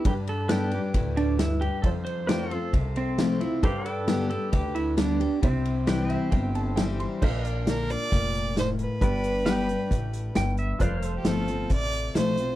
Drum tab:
CC |--------|--------|--------|--------|
RD |xxxxxxxx|xxxxxxxx|xxxxxxxx|xxxxxxxx|
HH |--------|--------|--------|--------|
SD |--o---o-|--o---o-|--o---o-|--o---o-|
BD |o---o---|o---o---|o---o---|o---o---|

CC |x-------|--------|--------|
RD |--------|--------|--------|
HH |-xxxxxxx|xxxxxxxx|xxxxxxxx|
SD |--o---o-|--o---o-|--o---o-|
BD |o---o---|o---o---|o---o---|